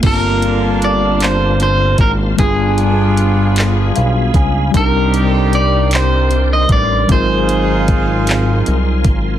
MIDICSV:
0, 0, Header, 1, 7, 480
1, 0, Start_track
1, 0, Key_signature, -2, "minor"
1, 0, Tempo, 784314
1, 20, Time_signature, 6, 3, 24, 8
1, 5745, End_track
2, 0, Start_track
2, 0, Title_t, "Tonewheel organ"
2, 0, Program_c, 0, 16
2, 21, Note_on_c, 0, 81, 60
2, 23, Note_on_c, 0, 77, 60
2, 23, Note_on_c, 0, 84, 78
2, 24, Note_on_c, 0, 70, 61
2, 1446, Note_off_c, 0, 81, 0
2, 1447, Note_off_c, 0, 77, 0
2, 1447, Note_off_c, 0, 84, 0
2, 1448, Note_off_c, 0, 70, 0
2, 1463, Note_on_c, 0, 83, 74
2, 1465, Note_on_c, 0, 68, 74
2, 1465, Note_on_c, 0, 80, 59
2, 1467, Note_on_c, 0, 77, 60
2, 2887, Note_off_c, 0, 83, 0
2, 2888, Note_off_c, 0, 68, 0
2, 2888, Note_off_c, 0, 80, 0
2, 2889, Note_off_c, 0, 77, 0
2, 2902, Note_on_c, 0, 84, 83
2, 2904, Note_on_c, 0, 70, 68
2, 2904, Note_on_c, 0, 72, 68
2, 2906, Note_on_c, 0, 74, 66
2, 4328, Note_off_c, 0, 72, 0
2, 4329, Note_off_c, 0, 74, 0
2, 4342, Note_on_c, 0, 77, 64
2, 4343, Note_on_c, 0, 80, 63
2, 5745, Note_off_c, 0, 70, 0
2, 5745, Note_off_c, 0, 77, 0
2, 5745, Note_off_c, 0, 80, 0
2, 5745, Note_off_c, 0, 84, 0
2, 5745, End_track
3, 0, Start_track
3, 0, Title_t, "Clean electric guitar"
3, 0, Program_c, 1, 27
3, 40, Note_on_c, 1, 70, 101
3, 514, Note_off_c, 1, 70, 0
3, 516, Note_on_c, 1, 74, 103
3, 732, Note_off_c, 1, 74, 0
3, 754, Note_on_c, 1, 72, 90
3, 988, Note_off_c, 1, 72, 0
3, 995, Note_on_c, 1, 72, 90
3, 1226, Note_off_c, 1, 72, 0
3, 1228, Note_on_c, 1, 70, 100
3, 1292, Note_off_c, 1, 70, 0
3, 1466, Note_on_c, 1, 68, 99
3, 2399, Note_off_c, 1, 68, 0
3, 2918, Note_on_c, 1, 70, 97
3, 3255, Note_off_c, 1, 70, 0
3, 3255, Note_on_c, 1, 69, 97
3, 3394, Note_off_c, 1, 69, 0
3, 3396, Note_on_c, 1, 74, 105
3, 3612, Note_off_c, 1, 74, 0
3, 3639, Note_on_c, 1, 72, 83
3, 3995, Note_off_c, 1, 72, 0
3, 3998, Note_on_c, 1, 75, 106
3, 4112, Note_off_c, 1, 75, 0
3, 4115, Note_on_c, 1, 74, 112
3, 4354, Note_off_c, 1, 74, 0
3, 4356, Note_on_c, 1, 72, 102
3, 5524, Note_off_c, 1, 72, 0
3, 5745, End_track
4, 0, Start_track
4, 0, Title_t, "Horn section"
4, 0, Program_c, 2, 61
4, 21, Note_on_c, 2, 50, 78
4, 21, Note_on_c, 2, 58, 79
4, 21, Note_on_c, 2, 62, 81
4, 1197, Note_off_c, 2, 50, 0
4, 1197, Note_off_c, 2, 58, 0
4, 1197, Note_off_c, 2, 62, 0
4, 1460, Note_on_c, 2, 59, 80
4, 1460, Note_on_c, 2, 62, 83
4, 1461, Note_on_c, 2, 65, 82
4, 2636, Note_off_c, 2, 59, 0
4, 2636, Note_off_c, 2, 62, 0
4, 2637, Note_off_c, 2, 65, 0
4, 2900, Note_on_c, 2, 63, 79
4, 2901, Note_on_c, 2, 55, 82
4, 2902, Note_on_c, 2, 67, 90
4, 4076, Note_off_c, 2, 63, 0
4, 4077, Note_off_c, 2, 55, 0
4, 4077, Note_off_c, 2, 67, 0
4, 4342, Note_on_c, 2, 63, 78
4, 4342, Note_on_c, 2, 65, 80
4, 4342, Note_on_c, 2, 68, 94
4, 5517, Note_off_c, 2, 63, 0
4, 5517, Note_off_c, 2, 65, 0
4, 5517, Note_off_c, 2, 68, 0
4, 5745, End_track
5, 0, Start_track
5, 0, Title_t, "Tine electric piano"
5, 0, Program_c, 3, 4
5, 0, Control_c, 3, 64, 127
5, 5, Note_on_c, 3, 58, 62
5, 16, Note_on_c, 3, 60, 53
5, 26, Note_on_c, 3, 62, 50
5, 29, Control_c, 3, 64, 0
5, 35, Note_on_c, 3, 65, 52
5, 46, Note_on_c, 3, 81, 68
5, 152, Control_c, 3, 64, 127
5, 1428, Note_off_c, 3, 58, 0
5, 1434, Note_off_c, 3, 60, 0
5, 1439, Note_off_c, 3, 62, 0
5, 1443, Note_off_c, 3, 65, 0
5, 1446, Note_on_c, 3, 55, 65
5, 1449, Note_off_c, 3, 81, 0
5, 1456, Note_on_c, 3, 58, 44
5, 1465, Note_on_c, 3, 62, 57
5, 1469, Control_c, 3, 64, 0
5, 1476, Note_on_c, 3, 65, 53
5, 1486, Note_on_c, 3, 68, 70
5, 1495, Note_on_c, 3, 59, 60
5, 1498, Note_off_c, 3, 58, 0
5, 1581, Control_c, 3, 64, 127
5, 2424, Note_on_c, 3, 77, 68
5, 2646, Note_off_c, 3, 77, 0
5, 2668, Note_on_c, 3, 80, 66
5, 2869, Note_off_c, 3, 55, 0
5, 2878, Note_off_c, 3, 62, 0
5, 2884, Note_off_c, 3, 65, 0
5, 2884, Note_on_c, 3, 55, 65
5, 2887, Note_off_c, 3, 80, 0
5, 2889, Note_off_c, 3, 68, 0
5, 2893, Note_off_c, 3, 59, 0
5, 2895, Note_on_c, 3, 60, 57
5, 2905, Note_on_c, 3, 62, 59
5, 2908, Control_c, 3, 64, 0
5, 2915, Note_on_c, 3, 63, 57
5, 2924, Note_on_c, 3, 70, 78
5, 2998, Control_c, 3, 64, 127
5, 4308, Note_off_c, 3, 55, 0
5, 4313, Note_off_c, 3, 60, 0
5, 4318, Note_off_c, 3, 62, 0
5, 4323, Note_off_c, 3, 63, 0
5, 4325, Note_on_c, 3, 54, 61
5, 4328, Note_off_c, 3, 70, 0
5, 4336, Note_on_c, 3, 60, 64
5, 4346, Note_on_c, 3, 63, 59
5, 4349, Control_c, 3, 64, 0
5, 4356, Note_on_c, 3, 65, 59
5, 4366, Note_on_c, 3, 70, 70
5, 4443, Control_c, 3, 64, 127
5, 5745, Note_off_c, 3, 54, 0
5, 5745, Note_off_c, 3, 60, 0
5, 5745, Note_off_c, 3, 63, 0
5, 5745, Note_off_c, 3, 65, 0
5, 5745, Note_off_c, 3, 70, 0
5, 5745, End_track
6, 0, Start_track
6, 0, Title_t, "Analog synth bass"
6, 0, Program_c, 4, 38
6, 24, Note_on_c, 4, 31, 109
6, 1198, Note_off_c, 4, 31, 0
6, 1219, Note_on_c, 4, 32, 101
6, 1436, Note_off_c, 4, 32, 0
6, 1466, Note_on_c, 4, 31, 101
6, 2399, Note_off_c, 4, 31, 0
6, 2431, Note_on_c, 4, 35, 83
6, 2642, Note_off_c, 4, 35, 0
6, 2661, Note_on_c, 4, 37, 93
6, 2877, Note_off_c, 4, 37, 0
6, 2907, Note_on_c, 4, 36, 95
6, 4079, Note_off_c, 4, 36, 0
6, 4102, Note_on_c, 4, 33, 98
6, 4317, Note_off_c, 4, 33, 0
6, 4345, Note_on_c, 4, 32, 113
6, 5278, Note_off_c, 4, 32, 0
6, 5311, Note_on_c, 4, 36, 83
6, 5542, Note_on_c, 4, 32, 95
6, 5551, Note_off_c, 4, 36, 0
6, 5745, Note_off_c, 4, 32, 0
6, 5745, End_track
7, 0, Start_track
7, 0, Title_t, "Drums"
7, 17, Note_on_c, 9, 42, 66
7, 17, Note_on_c, 9, 49, 87
7, 19, Note_on_c, 9, 36, 94
7, 78, Note_off_c, 9, 49, 0
7, 79, Note_off_c, 9, 42, 0
7, 81, Note_off_c, 9, 36, 0
7, 259, Note_on_c, 9, 42, 57
7, 321, Note_off_c, 9, 42, 0
7, 502, Note_on_c, 9, 42, 54
7, 563, Note_off_c, 9, 42, 0
7, 737, Note_on_c, 9, 42, 76
7, 755, Note_on_c, 9, 39, 110
7, 798, Note_off_c, 9, 42, 0
7, 816, Note_off_c, 9, 39, 0
7, 978, Note_on_c, 9, 42, 54
7, 1040, Note_off_c, 9, 42, 0
7, 1212, Note_on_c, 9, 42, 50
7, 1215, Note_on_c, 9, 36, 99
7, 1273, Note_off_c, 9, 42, 0
7, 1276, Note_off_c, 9, 36, 0
7, 1459, Note_on_c, 9, 42, 70
7, 1461, Note_on_c, 9, 36, 101
7, 1521, Note_off_c, 9, 42, 0
7, 1522, Note_off_c, 9, 36, 0
7, 1700, Note_on_c, 9, 42, 55
7, 1761, Note_off_c, 9, 42, 0
7, 1943, Note_on_c, 9, 42, 60
7, 2004, Note_off_c, 9, 42, 0
7, 2179, Note_on_c, 9, 42, 84
7, 2197, Note_on_c, 9, 39, 112
7, 2240, Note_off_c, 9, 42, 0
7, 2258, Note_off_c, 9, 39, 0
7, 2421, Note_on_c, 9, 42, 57
7, 2482, Note_off_c, 9, 42, 0
7, 2657, Note_on_c, 9, 36, 104
7, 2658, Note_on_c, 9, 42, 58
7, 2718, Note_off_c, 9, 36, 0
7, 2719, Note_off_c, 9, 42, 0
7, 2902, Note_on_c, 9, 36, 95
7, 2903, Note_on_c, 9, 42, 72
7, 2963, Note_off_c, 9, 36, 0
7, 2964, Note_off_c, 9, 42, 0
7, 3144, Note_on_c, 9, 42, 56
7, 3205, Note_off_c, 9, 42, 0
7, 3385, Note_on_c, 9, 42, 53
7, 3446, Note_off_c, 9, 42, 0
7, 3617, Note_on_c, 9, 42, 74
7, 3635, Note_on_c, 9, 39, 116
7, 3678, Note_off_c, 9, 42, 0
7, 3696, Note_off_c, 9, 39, 0
7, 3859, Note_on_c, 9, 42, 47
7, 3921, Note_off_c, 9, 42, 0
7, 4095, Note_on_c, 9, 36, 99
7, 4095, Note_on_c, 9, 42, 58
7, 4156, Note_off_c, 9, 42, 0
7, 4157, Note_off_c, 9, 36, 0
7, 4339, Note_on_c, 9, 42, 68
7, 4341, Note_on_c, 9, 36, 111
7, 4400, Note_off_c, 9, 42, 0
7, 4402, Note_off_c, 9, 36, 0
7, 4583, Note_on_c, 9, 42, 54
7, 4644, Note_off_c, 9, 42, 0
7, 4823, Note_on_c, 9, 42, 57
7, 4824, Note_on_c, 9, 36, 102
7, 4884, Note_off_c, 9, 42, 0
7, 4885, Note_off_c, 9, 36, 0
7, 5062, Note_on_c, 9, 42, 79
7, 5079, Note_on_c, 9, 39, 115
7, 5123, Note_off_c, 9, 42, 0
7, 5141, Note_off_c, 9, 39, 0
7, 5302, Note_on_c, 9, 42, 50
7, 5363, Note_off_c, 9, 42, 0
7, 5535, Note_on_c, 9, 42, 54
7, 5536, Note_on_c, 9, 36, 100
7, 5597, Note_off_c, 9, 42, 0
7, 5598, Note_off_c, 9, 36, 0
7, 5745, End_track
0, 0, End_of_file